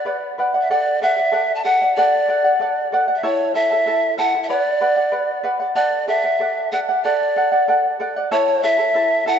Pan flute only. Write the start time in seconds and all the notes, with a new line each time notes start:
Already playing: D5
0.61 E5
0.71 D5
1.02 E5
1.55 A5
1.64 F#5
1.96 D5
3.15 E5
3.25 C#5
3.55 E5
4.18 F#5
4.43 E5
4.49 D5
5.76 D5
6.08 E5
6.72 F#5
7.05 D5
8.33 C#5
8.63 E5
9.27 F#5